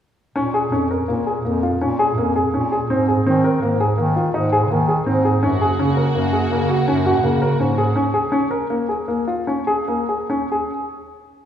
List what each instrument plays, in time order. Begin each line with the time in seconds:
0.36 bass clarinet A#2, grand piano C#4
0.54 grand piano G#4
0.71 bass clarinet F2, grand piano C#4
0.91 grand piano A#4
1.08 bass clarinet A#2, grand piano A#3
1.27 grand piano G#4
1.44 bass clarinet F2, grand piano A#3
1.63 grand piano F4
1.81 bass clarinet A#2, grand piano C#4
1.99 grand piano G#4
2.17 bass clarinet F2, grand piano A#3
2.36 grand piano G#4
2.54 bass clarinet A#2, grand piano C#4
2.72 grand piano G#4
2.89 bass clarinet G#2, grand piano C4
3.08 grand piano G#4
3.26 bass clarinet D#3, grand piano C4
3.44 grand piano A#4
3.62 bass clarinet G#2, grand piano A#3
3.80 grand piano G#4
3.98 bass clarinet D#3, grand piano A#3
4.16 grand piano F4
4.34 bass clarinet G#2, grand piano D#4
4.53 grand piano G#4
4.70 bass clarinet D#3, grand piano A#3
4.88 grand piano G#4
5.06 bass clarinet G#2, grand piano C4
5.25 grand piano G#4
5.42 bass clarinet F#2, string section C#3 A#3 F#4, grand piano C#4
5.61 grand piano G#4
5.79 bass clarinet C#3, grand piano C#4
5.97 grand piano A#4
6.15 bass clarinet F#2, grand piano A#3
6.33 grand piano G#4
6.51 bass clarinet C#3, grand piano A#3
6.70 grand piano F#4
6.87 bass clarinet F#2, grand piano C#4
7.06 grand piano F#4
7.23 bass clarinet C#3, grand piano A#3
7.42 grand piano A#4
7.59 bass clarinet G#2, grand piano C#4
7.78 grand piano G#4
7.96 grand piano C#4
8.14 grand piano G#4
8.32 grand piano C#4
8.51 grand piano A#4
8.70 grand piano A#3
8.89 grand piano G#4
9.08 grand piano A#3
9.28 grand piano F4
9.47 grand piano C#4
9.67 grand piano G#4
9.88 grand piano A#3
10.09 grand piano G#4
10.30 grand piano C#4
10.52 grand piano G#4